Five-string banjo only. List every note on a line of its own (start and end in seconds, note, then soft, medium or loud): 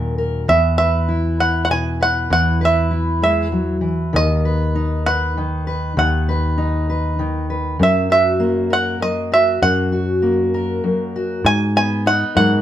0.49 0.77 E5 medium
0.78 1.40 E5 medium
1.40 1.64 F#5 medium
1.65 1.71 F#5 medium
1.71 1.99 G#5 medium
2.03 2.31 F#5 medium
2.33 2.60 F#5 medium
2.65 3.22 E5 medium
3.24 3.88 E5 medium
4.16 5.06 D#5 medium
5.06 5.98 F#5 medium
5.99 7.16 F#5 medium
7.83 8.11 E5 medium
8.12 8.73 E5 medium
8.73 9.02 F#5 medium
9.02 9.33 D#5 medium
9.34 9.62 E5 medium
9.63 10.80 F#5 medium
11.46 11.76 G#5 loud
11.77 12.07 G#5 medium
12.07 12.36 F#5 medium
12.37 12.62 F#5 medium